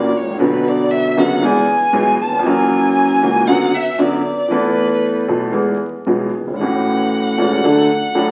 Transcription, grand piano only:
0.00 0.11 A#1 medium
0.00 0.11 A#2 medium
0.00 0.11 E3 medium
0.00 0.11 A#3 medium
0.00 0.11 C#4 medium
0.00 0.11 F#4 medium
0.22 0.28 G#1 soft
0.29 0.35 A1 medium
0.34 0.40 A#1 medium
0.38 1.13 B1 medium
0.38 1.13 B2 medium
0.38 1.12 D3 medium
0.38 1.13 F#3 medium
0.38 1.13 B3 medium
0.38 1.14 F#4 medium
1.17 1.39 F#1 medium
1.17 1.39 F#2 medium
1.17 1.39 D3 medium
1.17 1.39 F#3 medium
1.17 1.39 B3 medium
1.17 1.39 F#4 medium
1.43 1.64 E2 medium
1.43 1.64 E3 medium
1.43 1.64 G#3 medium
1.43 1.64 B3 medium
1.43 1.65 G#4 medium
1.93 2.15 B1 medium
1.93 2.15 B2 medium
1.93 2.15 E3 medium
1.93 2.15 G#3 medium
1.93 2.15 B3 medium
1.93 2.15 G#4 medium
2.26 2.32 D#2 soft
2.33 2.39 E2 medium
2.39 2.45 F2 medium
2.44 3.19 F#2 medium
2.44 3.17 E3 medium
2.44 3.18 F#3 medium
2.44 3.18 A#3 medium
2.44 3.19 C#4 medium
2.48 3.20 F#4 medium
3.22 3.44 C#2 medium
3.22 3.44 C#3 medium
3.22 3.44 E3 medium
3.22 3.44 A#3 medium
3.22 3.44 C#4 medium
3.22 3.44 F#4 medium
3.48 3.70 F#2 medium
3.48 3.69 D3 medium
3.48 3.70 F#3 medium
3.48 3.69 B3 medium
3.48 3.70 F#4 medium
3.98 4.20 F#2 medium
3.98 4.21 D3 medium
3.98 4.21 F#3 medium
3.98 4.21 B3 medium
3.98 4.20 F#4 medium
4.50 5.24 E2 medium
4.50 5.24 E3 medium
4.50 5.24 A3 medium
4.50 5.25 B3 medium
4.50 5.25 A4 medium
5.28 5.50 B1 medium
5.28 5.50 B2 medium
5.28 5.50 E3 medium
5.28 5.50 A3 medium
5.28 5.50 B3 medium
5.28 5.50 A4 medium
5.52 5.75 E2 medium
5.52 5.75 E3 medium
5.52 5.75 G#3 medium
5.52 5.75 B3 medium
5.52 5.75 G#4 medium
6.06 6.29 B1 medium
6.06 6.29 B2 medium
6.06 6.29 E3 medium
6.06 6.29 G#3 medium
6.06 6.29 B3 medium
6.06 6.29 G#4 medium
6.41 6.47 F#1 soft
6.47 6.53 G1 soft
6.53 6.60 G#1 medium
6.60 7.34 A1 medium
6.60 7.34 A2 medium
6.60 7.34 E3 medium
6.60 7.34 A3 medium
6.60 7.35 C#4 medium
6.60 7.36 F#4 medium
7.38 7.60 E1 medium
7.38 7.59 E2 medium
7.38 7.59 E3 medium
7.38 7.59 A3 medium
7.38 7.59 C#4 medium
7.38 7.60 F#4 medium
7.64 7.85 D2 medium
7.64 7.85 D3 medium
7.64 7.85 F#3 medium
7.64 7.85 A3 medium
7.64 7.85 D4 medium
7.64 7.85 A4 medium
8.15 8.31 A1 medium
8.15 8.31 A2 medium
8.15 8.31 F#3 medium
8.15 8.31 A3 medium
8.15 8.31 D4 medium
8.15 8.31 A4 medium

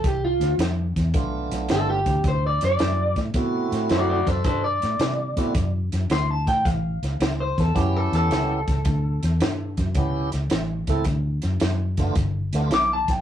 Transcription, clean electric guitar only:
0.06 0.23 G4 medium
0.25 0.54 F4 medium
1.72 1.88 A4 medium
1.90 2.25 G4 medium
2.28 2.44 C5 medium
2.47 2.63 D5 medium
2.65 3.17 D5 medium
3.92 4.08 F#4 medium
3.92 4.09 D5 medium
4.09 4.27 F#4 medium
4.09 4.28 D5 medium
4.27 4.44 A4 medium
4.27 4.45 C5 medium
4.45 4.62 A4 medium
4.45 4.63 C5 medium
4.64 5.71 D5 medium
6.12 6.31 C6 medium
6.31 6.48 A5 medium
6.48 6.67 G5 medium
6.67 7.38 F5 medium
7.40 7.60 C5 medium
7.60 7.78 A4 medium
7.78 7.96 G4 medium
7.96 8.13 A4 medium
8.15 9.75 A4 medium
12.74 12.91 D6 medium
12.93 13.11 A5 medium
13.11 13.21 G5 medium

